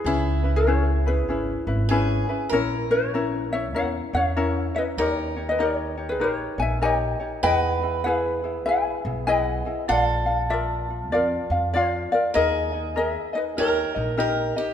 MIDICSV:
0, 0, Header, 1, 5, 480
1, 0, Start_track
1, 0, Tempo, 614754
1, 42, Time_signature, 4, 2, 24, 8
1, 11506, End_track
2, 0, Start_track
2, 0, Title_t, "Ukulele"
2, 0, Program_c, 0, 24
2, 0, Note_on_c, 0, 64, 64
2, 0, Note_on_c, 0, 68, 71
2, 408, Note_off_c, 0, 64, 0
2, 439, Note_on_c, 0, 73, 86
2, 441, Note_off_c, 0, 68, 0
2, 444, Note_on_c, 0, 70, 66
2, 802, Note_off_c, 0, 70, 0
2, 837, Note_off_c, 0, 73, 0
2, 840, Note_on_c, 0, 71, 79
2, 846, Note_on_c, 0, 68, 63
2, 1762, Note_off_c, 0, 71, 0
2, 1765, Note_off_c, 0, 68, 0
2, 1974, Note_on_c, 0, 70, 95
2, 1987, Note_on_c, 0, 64, 72
2, 2256, Note_off_c, 0, 64, 0
2, 2267, Note_off_c, 0, 70, 0
2, 2270, Note_on_c, 0, 73, 88
2, 2277, Note_on_c, 0, 70, 69
2, 2721, Note_off_c, 0, 70, 0
2, 2749, Note_off_c, 0, 73, 0
2, 2752, Note_on_c, 0, 76, 93
2, 2762, Note_on_c, 0, 73, 63
2, 2923, Note_off_c, 0, 73, 0
2, 2931, Note_off_c, 0, 76, 0
2, 2934, Note_on_c, 0, 78, 95
2, 2948, Note_on_c, 0, 73, 76
2, 3014, Note_off_c, 0, 78, 0
2, 3026, Note_off_c, 0, 73, 0
2, 3237, Note_on_c, 0, 76, 94
2, 3252, Note_on_c, 0, 73, 71
2, 3688, Note_off_c, 0, 73, 0
2, 3711, Note_off_c, 0, 76, 0
2, 3714, Note_on_c, 0, 75, 86
2, 3732, Note_on_c, 0, 71, 70
2, 3762, Note_off_c, 0, 75, 0
2, 3778, Note_off_c, 0, 71, 0
2, 3896, Note_on_c, 0, 74, 90
2, 3913, Note_on_c, 0, 70, 75
2, 4029, Note_off_c, 0, 74, 0
2, 4029, Note_on_c, 0, 73, 90
2, 4264, Note_off_c, 0, 70, 0
2, 4286, Note_on_c, 0, 75, 79
2, 4293, Note_off_c, 0, 73, 0
2, 4303, Note_on_c, 0, 71, 61
2, 4373, Note_on_c, 0, 74, 88
2, 4375, Note_off_c, 0, 71, 0
2, 4375, Note_off_c, 0, 75, 0
2, 4389, Note_on_c, 0, 70, 69
2, 4506, Note_off_c, 0, 74, 0
2, 4506, Note_on_c, 0, 73, 88
2, 4742, Note_off_c, 0, 70, 0
2, 4755, Note_on_c, 0, 71, 81
2, 4772, Note_off_c, 0, 73, 0
2, 4775, Note_on_c, 0, 68, 64
2, 4850, Note_off_c, 0, 71, 0
2, 4850, Note_on_c, 0, 73, 85
2, 4851, Note_off_c, 0, 68, 0
2, 4869, Note_on_c, 0, 70, 69
2, 5137, Note_off_c, 0, 70, 0
2, 5149, Note_on_c, 0, 80, 91
2, 5157, Note_off_c, 0, 73, 0
2, 5171, Note_on_c, 0, 76, 72
2, 5325, Note_off_c, 0, 80, 0
2, 5328, Note_off_c, 0, 76, 0
2, 5328, Note_on_c, 0, 80, 104
2, 5349, Note_on_c, 0, 75, 83
2, 5414, Note_off_c, 0, 80, 0
2, 5414, Note_on_c, 0, 79, 104
2, 5787, Note_off_c, 0, 75, 0
2, 5803, Note_off_c, 0, 79, 0
2, 5806, Note_on_c, 0, 79, 104
2, 5824, Note_on_c, 0, 75, 78
2, 5892, Note_off_c, 0, 79, 0
2, 5892, Note_on_c, 0, 78, 104
2, 6264, Note_off_c, 0, 75, 0
2, 6275, Note_off_c, 0, 78, 0
2, 6278, Note_on_c, 0, 76, 90
2, 6306, Note_on_c, 0, 71, 71
2, 6745, Note_off_c, 0, 71, 0
2, 6756, Note_off_c, 0, 76, 0
2, 6759, Note_on_c, 0, 80, 87
2, 6782, Note_on_c, 0, 76, 74
2, 7223, Note_off_c, 0, 76, 0
2, 7235, Note_off_c, 0, 80, 0
2, 7238, Note_on_c, 0, 78, 106
2, 7257, Note_on_c, 0, 75, 83
2, 7700, Note_off_c, 0, 75, 0
2, 7718, Note_off_c, 0, 78, 0
2, 7721, Note_on_c, 0, 77, 97
2, 7741, Note_on_c, 0, 74, 79
2, 8171, Note_off_c, 0, 77, 0
2, 8181, Note_off_c, 0, 74, 0
2, 8201, Note_on_c, 0, 76, 90
2, 8223, Note_on_c, 0, 70, 65
2, 8662, Note_off_c, 0, 70, 0
2, 8681, Note_off_c, 0, 76, 0
2, 8684, Note_on_c, 0, 74, 84
2, 8703, Note_on_c, 0, 70, 64
2, 9142, Note_off_c, 0, 70, 0
2, 9163, Note_on_c, 0, 72, 91
2, 9178, Note_off_c, 0, 74, 0
2, 9181, Note_on_c, 0, 65, 72
2, 9450, Note_off_c, 0, 65, 0
2, 9463, Note_on_c, 0, 74, 81
2, 9470, Note_off_c, 0, 72, 0
2, 9479, Note_on_c, 0, 70, 66
2, 9639, Note_off_c, 0, 70, 0
2, 9641, Note_off_c, 0, 74, 0
2, 9644, Note_on_c, 0, 75, 91
2, 9659, Note_on_c, 0, 70, 70
2, 10099, Note_off_c, 0, 70, 0
2, 10126, Note_off_c, 0, 75, 0
2, 10129, Note_on_c, 0, 76, 87
2, 10141, Note_on_c, 0, 70, 69
2, 10410, Note_off_c, 0, 70, 0
2, 10422, Note_off_c, 0, 76, 0
2, 10425, Note_on_c, 0, 75, 79
2, 10442, Note_on_c, 0, 71, 62
2, 10473, Note_off_c, 0, 75, 0
2, 10488, Note_off_c, 0, 71, 0
2, 10613, Note_on_c, 0, 73, 81
2, 10625, Note_on_c, 0, 70, 58
2, 11354, Note_off_c, 0, 73, 0
2, 11360, Note_off_c, 0, 70, 0
2, 11506, End_track
3, 0, Start_track
3, 0, Title_t, "Steel-string acoustic guitar"
3, 0, Program_c, 1, 25
3, 0, Note_on_c, 1, 66, 75
3, 50, Note_on_c, 1, 64, 87
3, 99, Note_off_c, 1, 66, 0
3, 1474, Note_on_c, 1, 68, 95
3, 1533, Note_off_c, 1, 64, 0
3, 1945, Note_off_c, 1, 68, 0
3, 1948, Note_on_c, 1, 70, 98
3, 3848, Note_off_c, 1, 70, 0
3, 3891, Note_on_c, 1, 70, 92
3, 5597, Note_off_c, 1, 70, 0
3, 5800, Note_on_c, 1, 71, 99
3, 7720, Note_on_c, 1, 69, 91
3, 7779, Note_off_c, 1, 71, 0
3, 9635, Note_on_c, 1, 68, 95
3, 9698, Note_off_c, 1, 69, 0
3, 10600, Note_off_c, 1, 68, 0
3, 10603, Note_on_c, 1, 70, 97
3, 11078, Note_off_c, 1, 70, 0
3, 11087, Note_on_c, 1, 70, 88
3, 11362, Note_off_c, 1, 70, 0
3, 11384, Note_on_c, 1, 67, 84
3, 11506, Note_off_c, 1, 67, 0
3, 11506, End_track
4, 0, Start_track
4, 0, Title_t, "Ukulele"
4, 0, Program_c, 2, 24
4, 42, Note_on_c, 2, 68, 72
4, 52, Note_on_c, 2, 61, 73
4, 54, Note_on_c, 2, 64, 76
4, 56, Note_on_c, 2, 71, 76
4, 329, Note_off_c, 2, 71, 0
4, 339, Note_off_c, 2, 64, 0
4, 339, Note_on_c, 2, 71, 51
4, 342, Note_off_c, 2, 68, 0
4, 343, Note_off_c, 2, 61, 0
4, 348, Note_on_c, 2, 64, 48
4, 353, Note_on_c, 2, 61, 41
4, 517, Note_off_c, 2, 61, 0
4, 522, Note_off_c, 2, 71, 0
4, 523, Note_off_c, 2, 64, 0
4, 525, Note_on_c, 2, 68, 71
4, 526, Note_on_c, 2, 61, 75
4, 533, Note_on_c, 2, 64, 80
4, 824, Note_off_c, 2, 68, 0
4, 825, Note_off_c, 2, 61, 0
4, 825, Note_off_c, 2, 64, 0
4, 828, Note_on_c, 2, 71, 50
4, 835, Note_on_c, 2, 64, 46
4, 844, Note_on_c, 2, 61, 43
4, 1000, Note_off_c, 2, 61, 0
4, 1003, Note_on_c, 2, 68, 55
4, 1007, Note_off_c, 2, 64, 0
4, 1007, Note_off_c, 2, 71, 0
4, 1009, Note_on_c, 2, 61, 60
4, 1016, Note_on_c, 2, 64, 64
4, 1020, Note_on_c, 2, 71, 68
4, 1296, Note_off_c, 2, 71, 0
4, 1303, Note_off_c, 2, 64, 0
4, 1304, Note_off_c, 2, 68, 0
4, 1305, Note_on_c, 2, 71, 48
4, 1307, Note_off_c, 2, 61, 0
4, 1313, Note_on_c, 2, 64, 46
4, 1319, Note_on_c, 2, 61, 41
4, 1482, Note_off_c, 2, 61, 0
4, 1482, Note_off_c, 2, 64, 0
4, 1486, Note_off_c, 2, 71, 0
4, 1487, Note_on_c, 2, 68, 93
4, 1491, Note_on_c, 2, 61, 96
4, 1492, Note_on_c, 2, 64, 97
4, 1497, Note_on_c, 2, 71, 93
4, 1778, Note_off_c, 2, 71, 0
4, 1785, Note_off_c, 2, 64, 0
4, 1786, Note_off_c, 2, 68, 0
4, 1787, Note_on_c, 2, 71, 61
4, 1788, Note_off_c, 2, 61, 0
4, 1794, Note_on_c, 2, 64, 55
4, 1802, Note_on_c, 2, 61, 49
4, 1962, Note_off_c, 2, 61, 0
4, 1965, Note_off_c, 2, 64, 0
4, 1968, Note_off_c, 2, 71, 0
4, 1972, Note_on_c, 2, 61, 78
4, 1972, Note_on_c, 2, 70, 74
4, 1975, Note_on_c, 2, 64, 79
4, 1980, Note_on_c, 2, 73, 82
4, 2269, Note_off_c, 2, 61, 0
4, 2269, Note_off_c, 2, 70, 0
4, 2269, Note_off_c, 2, 73, 0
4, 2270, Note_off_c, 2, 64, 0
4, 2279, Note_on_c, 2, 73, 51
4, 2287, Note_on_c, 2, 64, 44
4, 2292, Note_on_c, 2, 61, 46
4, 2449, Note_off_c, 2, 61, 0
4, 2449, Note_off_c, 2, 64, 0
4, 2451, Note_on_c, 2, 70, 73
4, 2454, Note_off_c, 2, 73, 0
4, 2458, Note_on_c, 2, 61, 73
4, 2458, Note_on_c, 2, 64, 87
4, 2462, Note_on_c, 2, 73, 87
4, 2744, Note_off_c, 2, 73, 0
4, 2748, Note_off_c, 2, 70, 0
4, 2749, Note_off_c, 2, 64, 0
4, 2752, Note_off_c, 2, 61, 0
4, 2753, Note_on_c, 2, 73, 57
4, 2758, Note_on_c, 2, 64, 51
4, 2768, Note_on_c, 2, 61, 44
4, 2921, Note_off_c, 2, 61, 0
4, 2924, Note_on_c, 2, 70, 58
4, 2928, Note_off_c, 2, 64, 0
4, 2930, Note_on_c, 2, 61, 58
4, 2931, Note_off_c, 2, 73, 0
4, 2937, Note_on_c, 2, 64, 62
4, 2941, Note_on_c, 2, 73, 64
4, 3218, Note_off_c, 2, 73, 0
4, 3225, Note_off_c, 2, 70, 0
4, 3227, Note_on_c, 2, 73, 50
4, 3228, Note_off_c, 2, 61, 0
4, 3229, Note_off_c, 2, 64, 0
4, 3239, Note_on_c, 2, 64, 48
4, 3249, Note_on_c, 2, 61, 45
4, 3400, Note_off_c, 2, 61, 0
4, 3403, Note_off_c, 2, 64, 0
4, 3405, Note_off_c, 2, 73, 0
4, 3408, Note_on_c, 2, 70, 86
4, 3409, Note_on_c, 2, 61, 88
4, 3412, Note_on_c, 2, 64, 82
4, 3414, Note_on_c, 2, 73, 94
4, 3696, Note_off_c, 2, 73, 0
4, 3705, Note_on_c, 2, 73, 51
4, 3707, Note_off_c, 2, 64, 0
4, 3707, Note_off_c, 2, 70, 0
4, 3708, Note_off_c, 2, 61, 0
4, 3717, Note_on_c, 2, 64, 47
4, 3725, Note_on_c, 2, 61, 39
4, 3887, Note_off_c, 2, 73, 0
4, 3891, Note_on_c, 2, 70, 73
4, 3892, Note_off_c, 2, 61, 0
4, 3893, Note_off_c, 2, 64, 0
4, 3895, Note_on_c, 2, 63, 74
4, 3899, Note_on_c, 2, 67, 77
4, 3900, Note_on_c, 2, 73, 85
4, 4179, Note_off_c, 2, 73, 0
4, 4185, Note_off_c, 2, 67, 0
4, 4189, Note_off_c, 2, 70, 0
4, 4189, Note_on_c, 2, 73, 53
4, 4190, Note_off_c, 2, 63, 0
4, 4194, Note_on_c, 2, 67, 48
4, 4200, Note_on_c, 2, 63, 40
4, 4360, Note_off_c, 2, 63, 0
4, 4363, Note_off_c, 2, 67, 0
4, 4363, Note_on_c, 2, 70, 70
4, 4366, Note_off_c, 2, 73, 0
4, 4370, Note_on_c, 2, 63, 68
4, 4373, Note_on_c, 2, 67, 66
4, 4376, Note_on_c, 2, 73, 80
4, 4656, Note_off_c, 2, 73, 0
4, 4658, Note_off_c, 2, 67, 0
4, 4664, Note_off_c, 2, 70, 0
4, 4665, Note_on_c, 2, 73, 52
4, 4666, Note_off_c, 2, 63, 0
4, 4667, Note_on_c, 2, 67, 47
4, 4675, Note_on_c, 2, 63, 39
4, 4836, Note_off_c, 2, 63, 0
4, 4838, Note_on_c, 2, 70, 57
4, 4840, Note_off_c, 2, 67, 0
4, 4844, Note_off_c, 2, 73, 0
4, 4846, Note_on_c, 2, 63, 60
4, 4849, Note_on_c, 2, 67, 62
4, 4854, Note_on_c, 2, 73, 66
4, 5128, Note_off_c, 2, 73, 0
4, 5137, Note_on_c, 2, 73, 52
4, 5142, Note_off_c, 2, 70, 0
4, 5146, Note_off_c, 2, 63, 0
4, 5147, Note_off_c, 2, 67, 0
4, 5159, Note_on_c, 2, 63, 42
4, 5314, Note_off_c, 2, 63, 0
4, 5321, Note_on_c, 2, 70, 76
4, 5323, Note_off_c, 2, 73, 0
4, 5324, Note_on_c, 2, 63, 73
4, 5331, Note_on_c, 2, 67, 85
4, 5333, Note_on_c, 2, 73, 90
4, 5611, Note_off_c, 2, 73, 0
4, 5618, Note_off_c, 2, 67, 0
4, 5620, Note_on_c, 2, 73, 47
4, 5623, Note_off_c, 2, 70, 0
4, 5625, Note_off_c, 2, 63, 0
4, 5627, Note_on_c, 2, 67, 45
4, 5638, Note_on_c, 2, 63, 42
4, 5800, Note_off_c, 2, 63, 0
4, 5800, Note_on_c, 2, 71, 79
4, 5803, Note_on_c, 2, 64, 66
4, 5804, Note_off_c, 2, 73, 0
4, 5807, Note_off_c, 2, 67, 0
4, 5808, Note_on_c, 2, 75, 78
4, 5810, Note_on_c, 2, 68, 80
4, 6098, Note_off_c, 2, 75, 0
4, 6103, Note_off_c, 2, 71, 0
4, 6104, Note_off_c, 2, 64, 0
4, 6106, Note_off_c, 2, 68, 0
4, 6107, Note_on_c, 2, 75, 50
4, 6115, Note_on_c, 2, 68, 45
4, 6121, Note_on_c, 2, 64, 40
4, 6282, Note_off_c, 2, 75, 0
4, 6284, Note_off_c, 2, 64, 0
4, 6285, Note_off_c, 2, 68, 0
4, 6285, Note_on_c, 2, 71, 69
4, 6293, Note_on_c, 2, 64, 73
4, 6294, Note_on_c, 2, 68, 83
4, 6579, Note_off_c, 2, 68, 0
4, 6585, Note_off_c, 2, 64, 0
4, 6585, Note_off_c, 2, 71, 0
4, 6588, Note_on_c, 2, 68, 46
4, 6598, Note_on_c, 2, 64, 46
4, 6758, Note_off_c, 2, 64, 0
4, 6759, Note_on_c, 2, 71, 53
4, 6764, Note_off_c, 2, 68, 0
4, 6767, Note_on_c, 2, 64, 60
4, 6773, Note_on_c, 2, 68, 63
4, 7061, Note_off_c, 2, 68, 0
4, 7061, Note_off_c, 2, 71, 0
4, 7065, Note_off_c, 2, 64, 0
4, 7070, Note_on_c, 2, 68, 46
4, 7079, Note_on_c, 2, 64, 42
4, 7234, Note_off_c, 2, 64, 0
4, 7239, Note_off_c, 2, 68, 0
4, 7241, Note_on_c, 2, 71, 83
4, 7243, Note_on_c, 2, 64, 79
4, 7249, Note_on_c, 2, 68, 78
4, 7249, Note_on_c, 2, 75, 85
4, 7526, Note_off_c, 2, 75, 0
4, 7532, Note_off_c, 2, 71, 0
4, 7535, Note_off_c, 2, 68, 0
4, 7535, Note_on_c, 2, 75, 52
4, 7541, Note_off_c, 2, 64, 0
4, 7544, Note_on_c, 2, 68, 46
4, 7551, Note_on_c, 2, 64, 42
4, 7712, Note_off_c, 2, 75, 0
4, 7715, Note_off_c, 2, 68, 0
4, 7715, Note_on_c, 2, 74, 74
4, 7718, Note_on_c, 2, 65, 71
4, 7721, Note_on_c, 2, 77, 76
4, 7728, Note_off_c, 2, 64, 0
4, 8001, Note_off_c, 2, 77, 0
4, 8011, Note_on_c, 2, 77, 52
4, 8016, Note_off_c, 2, 65, 0
4, 8019, Note_off_c, 2, 74, 0
4, 8026, Note_on_c, 2, 65, 39
4, 8190, Note_off_c, 2, 65, 0
4, 8197, Note_on_c, 2, 74, 72
4, 8198, Note_off_c, 2, 77, 0
4, 8200, Note_on_c, 2, 65, 74
4, 8499, Note_off_c, 2, 74, 0
4, 8501, Note_off_c, 2, 65, 0
4, 8513, Note_on_c, 2, 65, 40
4, 8678, Note_off_c, 2, 65, 0
4, 8682, Note_on_c, 2, 74, 62
4, 8687, Note_on_c, 2, 65, 65
4, 8696, Note_on_c, 2, 77, 65
4, 8981, Note_off_c, 2, 77, 0
4, 8982, Note_off_c, 2, 74, 0
4, 8984, Note_off_c, 2, 65, 0
4, 8990, Note_on_c, 2, 77, 51
4, 9005, Note_on_c, 2, 65, 40
4, 9167, Note_off_c, 2, 77, 0
4, 9169, Note_off_c, 2, 65, 0
4, 9170, Note_on_c, 2, 74, 85
4, 9178, Note_on_c, 2, 65, 82
4, 9186, Note_on_c, 2, 77, 91
4, 9454, Note_off_c, 2, 77, 0
4, 9463, Note_on_c, 2, 77, 51
4, 9465, Note_off_c, 2, 74, 0
4, 9466, Note_off_c, 2, 65, 0
4, 9476, Note_on_c, 2, 65, 44
4, 9640, Note_on_c, 2, 70, 77
4, 9643, Note_off_c, 2, 77, 0
4, 9647, Note_off_c, 2, 65, 0
4, 9649, Note_on_c, 2, 68, 82
4, 9650, Note_on_c, 2, 63, 82
4, 9654, Note_on_c, 2, 75, 81
4, 9922, Note_off_c, 2, 75, 0
4, 9932, Note_on_c, 2, 75, 48
4, 9934, Note_off_c, 2, 68, 0
4, 9940, Note_off_c, 2, 70, 0
4, 9942, Note_off_c, 2, 63, 0
4, 9944, Note_on_c, 2, 68, 47
4, 9951, Note_on_c, 2, 63, 41
4, 10117, Note_off_c, 2, 68, 0
4, 10117, Note_off_c, 2, 75, 0
4, 10118, Note_on_c, 2, 70, 74
4, 10126, Note_on_c, 2, 68, 77
4, 10127, Note_off_c, 2, 63, 0
4, 10409, Note_on_c, 2, 75, 50
4, 10412, Note_off_c, 2, 68, 0
4, 10418, Note_off_c, 2, 70, 0
4, 10421, Note_on_c, 2, 68, 48
4, 10426, Note_on_c, 2, 63, 43
4, 10590, Note_off_c, 2, 68, 0
4, 10593, Note_off_c, 2, 63, 0
4, 10594, Note_on_c, 2, 70, 54
4, 10596, Note_off_c, 2, 75, 0
4, 10602, Note_on_c, 2, 63, 63
4, 10609, Note_on_c, 2, 67, 64
4, 10612, Note_on_c, 2, 75, 67
4, 10880, Note_off_c, 2, 75, 0
4, 10889, Note_off_c, 2, 67, 0
4, 10889, Note_on_c, 2, 75, 57
4, 10895, Note_off_c, 2, 70, 0
4, 10896, Note_off_c, 2, 63, 0
4, 10898, Note_on_c, 2, 67, 46
4, 10905, Note_on_c, 2, 63, 41
4, 11063, Note_off_c, 2, 63, 0
4, 11064, Note_off_c, 2, 67, 0
4, 11066, Note_off_c, 2, 75, 0
4, 11067, Note_on_c, 2, 70, 89
4, 11073, Note_on_c, 2, 63, 88
4, 11073, Note_on_c, 2, 67, 89
4, 11076, Note_on_c, 2, 75, 93
4, 11361, Note_off_c, 2, 75, 0
4, 11368, Note_off_c, 2, 67, 0
4, 11371, Note_on_c, 2, 75, 56
4, 11373, Note_off_c, 2, 70, 0
4, 11375, Note_off_c, 2, 63, 0
4, 11377, Note_on_c, 2, 67, 57
4, 11386, Note_on_c, 2, 63, 43
4, 11506, Note_off_c, 2, 63, 0
4, 11506, Note_off_c, 2, 67, 0
4, 11506, Note_off_c, 2, 75, 0
4, 11506, End_track
5, 0, Start_track
5, 0, Title_t, "Upright bass"
5, 0, Program_c, 3, 32
5, 35, Note_on_c, 3, 37, 91
5, 1002, Note_off_c, 3, 37, 0
5, 1002, Note_on_c, 3, 32, 88
5, 1197, Note_off_c, 3, 32, 0
5, 1303, Note_on_c, 3, 32, 94
5, 1734, Note_off_c, 3, 32, 0
5, 1965, Note_on_c, 3, 34, 89
5, 2927, Note_off_c, 3, 34, 0
5, 2927, Note_on_c, 3, 40, 86
5, 3121, Note_off_c, 3, 40, 0
5, 3228, Note_on_c, 3, 40, 88
5, 3658, Note_off_c, 3, 40, 0
5, 3885, Note_on_c, 3, 39, 93
5, 4844, Note_off_c, 3, 39, 0
5, 4844, Note_on_c, 3, 34, 79
5, 5040, Note_off_c, 3, 34, 0
5, 5138, Note_on_c, 3, 34, 90
5, 5570, Note_off_c, 3, 34, 0
5, 5802, Note_on_c, 3, 40, 94
5, 6762, Note_off_c, 3, 40, 0
5, 6762, Note_on_c, 3, 35, 79
5, 6957, Note_off_c, 3, 35, 0
5, 7065, Note_on_c, 3, 35, 94
5, 7494, Note_off_c, 3, 35, 0
5, 7728, Note_on_c, 3, 34, 88
5, 8687, Note_off_c, 3, 34, 0
5, 8687, Note_on_c, 3, 41, 79
5, 8880, Note_off_c, 3, 41, 0
5, 8979, Note_on_c, 3, 41, 89
5, 9409, Note_off_c, 3, 41, 0
5, 9648, Note_on_c, 3, 39, 91
5, 10270, Note_off_c, 3, 39, 0
5, 10603, Note_on_c, 3, 39, 81
5, 10797, Note_off_c, 3, 39, 0
5, 10901, Note_on_c, 3, 34, 85
5, 11330, Note_off_c, 3, 34, 0
5, 11506, End_track
0, 0, End_of_file